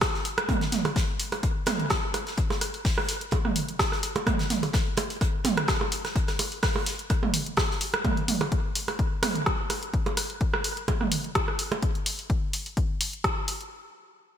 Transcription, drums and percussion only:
0.01 kick, cross-stick, snare, closed hi-hat, percussion blips
0.14 snare
0.25 closed hi-hat, open hi-hat
0.38 cross-stick, closed hi-hat
0.49 kick, closed hi-hat, mid tom, percussion blips
0.61 snare, closed hi-hat
0.72 snare, closed hi-hat, mid tom, open hi-hat
0.85 cross-stick, open hi-hat, percussion blips
0.96 kick, snare, closed hi-hat
1.20 closed hi-hat, open hi-hat
1.32 cross-stick, closed hi-hat, open hi-hat, percussion blips
1.43 kick, closed hi-hat
1.66 cross-stick, snare, closed hi-hat, mid tom, open hi-hat, percussion blips
1.80 closed hi-hat
1.90 kick, cross-stick, snare, closed hi-hat
2.14 cross-stick, closed hi-hat, open hi-hat, percussion blips
2.27 snare, closed hi-hat
2.37 kick, closed hi-hat
2.50 snare, closed hi-hat, percussion blips
2.61 cross-stick, closed hi-hat, open hi-hat
2.74 open hi-hat
2.85 kick, snare, closed hi-hat, open hi-hat
2.98 cross-stick, percussion blips
3.08 snare, closed hi-hat, open hi-hat
3.21 closed hi-hat
3.31 kick, closed hi-hat, percussion blips
3.45 cross-stick, mid tom
3.56 closed hi-hat, open hi-hat
3.68 closed hi-hat
3.79 kick, cross-stick, snare, closed hi-hat, percussion blips
3.92 cross-stick, snare
4.03 closed hi-hat, open hi-hat
4.16 closed hi-hat, percussion blips
4.27 kick, cross-stick, closed hi-hat, mid tom
4.39 snare, closed hi-hat
4.50 snare, closed hi-hat, mid tom, open hi-hat
4.63 open hi-hat, percussion blips
4.73 kick, cross-stick, snare, closed hi-hat
4.97 closed hi-hat, open hi-hat, percussion blips
5.10 closed hi-hat, open hi-hat
5.21 kick, cross-stick, closed hi-hat
5.44 snare, closed hi-hat, mid tom, open hi-hat, percussion blips
5.57 cross-stick, closed hi-hat
5.68 kick, cross-stick, snare, closed hi-hat
5.81 percussion blips
5.92 closed hi-hat, open hi-hat
6.05 cross-stick, snare, closed hi-hat
6.16 kick, closed hi-hat
6.27 cross-stick, snare, closed hi-hat
6.39 closed hi-hat, open hi-hat, percussion blips
6.52 open hi-hat
6.63 kick, cross-stick, snare, closed hi-hat, open hi-hat
6.76 percussion blips
6.86 snare, closed hi-hat, open hi-hat
6.99 closed hi-hat
7.10 kick, cross-stick, closed hi-hat
7.23 mid tom, percussion blips
7.34 closed hi-hat, open hi-hat
7.46 closed hi-hat
7.57 kick, cross-stick, snare, closed hi-hat, percussion blips
7.71 snare
7.81 closed hi-hat, open hi-hat
7.94 cross-stick, closed hi-hat
8.05 kick, closed hi-hat, mid tom, percussion blips
8.17 closed hi-hat
8.28 mid tom, open hi-hat
8.41 cross-stick, open hi-hat, percussion blips
8.52 kick, closed hi-hat
8.75 open hi-hat
8.88 cross-stick, open hi-hat, percussion blips
8.99 kick, closed hi-hat
9.23 cross-stick, mid tom, open hi-hat, percussion blips
9.35 closed hi-hat
9.46 kick, cross-stick, closed hi-hat
9.70 cross-stick, open hi-hat, percussion blips
9.83 closed hi-hat
9.94 kick, closed hi-hat
10.06 closed hi-hat, percussion blips
10.17 cross-stick, open hi-hat
10.30 open hi-hat
10.41 kick, closed hi-hat
10.54 cross-stick, percussion blips
10.64 open hi-hat
10.77 closed hi-hat
10.88 kick, closed hi-hat, percussion blips
11.01 cross-stick, mid tom
11.12 open hi-hat
11.24 closed hi-hat
11.35 kick, cross-stick, closed hi-hat, percussion blips
11.48 cross-stick
11.59 open hi-hat
11.72 closed hi-hat, percussion blips
11.82 kick, closed hi-hat
11.95 closed hi-hat
12.06 open hi-hat
12.19 open hi-hat
12.30 kick, closed hi-hat
12.53 open hi-hat
12.66 open hi-hat
12.77 kick, closed hi-hat
13.01 open hi-hat
13.13 closed hi-hat
13.24 kick, cross-stick, closed hi-hat
13.48 open hi-hat
13.61 closed hi-hat

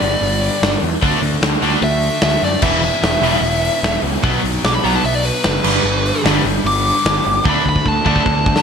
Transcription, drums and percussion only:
0.02 open hi-hat
0.23 open hi-hat
0.43 open hi-hat
0.63 snare, open hi-hat
0.83 open hi-hat
1.02 kick, open hi-hat
1.23 open hi-hat
1.43 snare
1.62 open hi-hat
1.82 open hi-hat
2.02 open hi-hat
2.22 snare, open hi-hat
2.42 open hi-hat
2.62 kick, crash
2.82 open hi-hat
3.03 snare, open hi-hat
3.23 open hi-hat
3.44 open hi-hat
3.65 open hi-hat
3.84 snare
4.04 open hi-hat
4.23 kick, open hi-hat
4.45 open hi-hat
4.64 snare, open hi-hat
4.85 open hi-hat
5.05 open hi-hat
5.23 open hi-hat
5.44 snare, open hi-hat
5.64 crash
6.06 open hi-hat
6.25 snare, open hi-hat
6.45 open hi-hat
6.66 open hi-hat
6.86 open hi-hat
7.06 snare, open hi-hat
7.25 open hi-hat
7.45 kick
7.66 kick
7.76 kick
7.86 kick
8.06 kick
8.16 kick
8.26 kick
8.46 kick
8.56 snare

